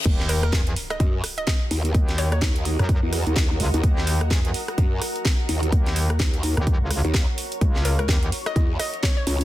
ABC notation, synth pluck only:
X:1
M:4/4
L:1/16
Q:"Swing 16ths" 1/4=127
K:Ebphr
V:1 name="Synth pluck"
z2 B B z3 e z3 e e z3 | z2 d d z12 | z16 | z16 |
z2 B B z3 e z2 e2 d d z2 |]